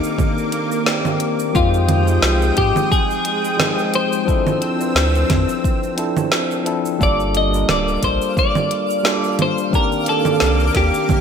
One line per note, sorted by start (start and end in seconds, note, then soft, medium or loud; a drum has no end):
0.00 0.84 D#3 loud
0.00 0.85 A#3 medium
0.00 1.51 A#3 medium
0.00 0.86 C4 medium
0.00 1.56 D4 medium
0.00 1.18 D#4 medium
0.00 0.88 G4 loud
0.00 0.84 A4 medium
0.00 0.84 D5 medium
0.00 1.52 D6 loud
0.00 cabasa medium
0.18 kick loud
0.18 low conga medium
0.18 cabasa medium
0.38 cabasa soft
0.52 closed hi-hat medium
0.72 cabasa medium
0.84 1.50 D#3 medium
0.84 1.50 A#3 medium
0.84 1.51 C4 medium
0.84 1.52 G4 medium
0.84 1.51 D5 medium
0.84 snare loud
0.84 cabasa medium
1.05 low conga medium
1.05 cabasa soft
1.20 closed hi-hat medium
1.39 cabasa medium
1.53 2.19 F2 loud
1.53 2.02 F3 medium
1.53 2.02 G#3 medium
1.53 4.25 G#3 medium
1.53 2.03 C4 medium
1.53 2.03 D#4 medium
1.53 2.57 F4 medium
1.53 2.04 G4 loud
1.53 4.25 G5 medium
1.53 4.25 D#6 loud
1.53 kick loud
1.53 cabasa medium
1.74 cabasa soft
1.89 closed hi-hat medium
1.89 low conga medium
2.03 3.53 F3 medium
2.03 3.54 G#3 medium
2.03 3.55 C4 medium
2.08 3.56 D#4 medium
2.08 3.57 F4 medium
2.08 cabasa medium
2.22 2.52 C2 medium
2.22 snare loud
2.22 cabasa medium
2.42 cabasa soft
2.57 2.73 G#2 medium
2.57 2.91 G4 medium
2.57 kick medium
2.57 closed hi-hat medium
2.76 low conga medium
2.76 cabasa medium
2.92 3.95 G#4 loud
2.92 kick loud
2.92 cabasa medium
3.10 cabasa soft
3.25 closed hi-hat medium
3.45 cabasa medium
3.57 4.23 F3 medium
3.57 4.23 G#3 medium
3.57 4.23 C4 medium
3.57 4.24 D#4 medium
3.57 4.24 G5 medium
3.57 snare loud
3.57 low conga medium
3.57 cabasa medium
3.79 cabasa soft
3.94 4.93 C5 loud
3.94 closed hi-hat medium
4.12 cabasa medium
4.25 4.74 F3 loud
4.25 4.75 C4 medium
4.25 6.98 C4 medium
4.25 4.75 D4 medium
4.25 4.76 E4 medium
4.25 4.76 A4 loud
4.25 6.97 E6 loud
4.25 kick loud
4.25 cabasa medium
4.47 low conga medium
4.47 cabasa soft
4.62 closed hi-hat medium
4.76 5.93 F3 medium
4.76 5.93 C4 medium
4.76 5.94 D4 medium
4.81 5.95 E4 medium
4.81 5.96 B4 medium
4.81 cabasa medium
4.95 5.25 D2 medium
4.95 snare loud
4.95 cabasa medium
5.15 cabasa soft
5.30 5.46 F2 medium
5.30 kick medium
5.30 snare soft
5.30 closed hi-hat medium
5.30 low conga medium
5.49 cabasa medium
5.64 kick loud
5.64 cabasa medium
5.83 cabasa soft
5.95 6.61 F3 medium
5.95 6.61 C4 medium
5.95 6.62 D4 medium
5.95 6.62 E4 medium
5.95 6.63 A4 medium
5.95 closed hi-hat medium
6.17 low conga medium
6.17 cabasa medium
6.32 snare loud
6.32 cabasa medium
6.51 cabasa soft
6.64 6.95 F3 medium
6.64 6.96 C4 medium
6.64 6.96 D4 medium
6.64 6.97 E4 medium
6.64 6.97 A4 loud
6.64 closed hi-hat medium
6.85 cabasa medium
6.98 7.65 G1 loud
6.98 7.47 G3 loud
6.98 7.48 A#3 medium
6.98 7.48 D4 loud
6.98 7.49 F4 medium
6.98 7.49 A4 loud
6.98 11.21 F5 medium
6.98 11.21 D6 medium
6.98 kick loud
6.98 cabasa medium
7.03 7.37 D5 loud
7.20 cabasa soft
7.35 7.70 D#5 loud
7.35 closed hi-hat medium
7.49 8.99 G3 medium
7.49 9.00 A#3 medium
7.49 9.01 D4 medium
7.54 9.01 F4 medium
7.54 9.02 A#4 medium
7.54 cabasa medium
7.68 7.98 D1 medium
7.68 8.04 D5 loud
7.68 snare loud
7.68 low conga medium
7.68 cabasa medium
7.88 cabasa soft
8.03 8.18 A#1 medium
8.03 8.38 C5 loud
8.03 kick medium
8.03 closed hi-hat medium
8.22 cabasa medium
8.37 9.36 D5 loud
8.37 kick loud
8.37 cabasa medium
8.55 low conga medium
8.55 cabasa soft
8.71 closed hi-hat medium
8.90 cabasa medium
9.03 9.68 G3 medium
9.03 9.69 A#3 medium
9.03 9.69 D4 medium
9.03 9.70 F4 medium
9.03 9.70 A4 loud
9.03 snare loud
9.03 cabasa medium
9.24 cabasa soft
9.39 9.72 C5 loud
9.39 closed hi-hat medium
9.39 low conga medium
9.58 cabasa medium
9.70 10.20 D#3 loud
9.70 10.20 A#3 medium
9.70 11.21 A#3 medium
9.70 10.21 C4 medium
9.70 10.21 D4 medium
9.70 10.22 G4 loud
9.70 11.21 D6 loud
9.70 kick loud
9.70 cabasa medium
9.75 10.09 A#4 loud
9.92 cabasa soft
10.06 10.72 A4 loud
10.06 closed hi-hat medium
10.22 11.21 D#3 medium
10.22 11.21 A#3 medium
10.22 11.21 C4 medium
10.22 low conga medium
10.26 11.21 D4 medium
10.26 11.21 A4 medium
10.26 cabasa medium
10.40 10.70 C2 medium
10.40 snare loud
10.40 cabasa medium
10.60 cabasa soft
10.75 10.91 D#2 medium
10.75 11.21 G4 loud
10.75 kick medium
10.75 snare soft
10.75 closed hi-hat medium
10.94 cabasa medium
11.09 kick loud
11.09 low conga medium
11.09 cabasa medium